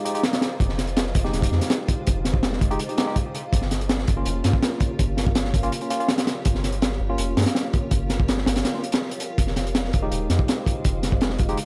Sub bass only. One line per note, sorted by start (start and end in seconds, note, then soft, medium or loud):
0.60 1.14 F1 loud
1.15 1.32 F1 loud
1.33 1.50 D#1 loud
1.52 1.60 F2 medium
2.07 2.60 F1 loud
2.61 2.78 F1 loud
3.53 4.06 G1 loud
4.08 4.24 G1 loud
4.26 4.42 F1 loud
4.44 4.53 G2 loud
4.99 5.53 G1 loud
5.54 5.70 G1 loud
6.46 6.99 G1 loud
7.00 7.17 G1 loud
7.18 7.35 F1 loud
7.37 7.45 G2 medium
7.91 8.45 G1 medium
8.47 8.63 G1 loud
9.38 9.92 F1 loud
9.94 10.10 F1 loud
10.11 10.28 D#1 loud
10.30 10.38 F2 medium
10.85 11.38 F1 loud
11.40 11.56 F1 loud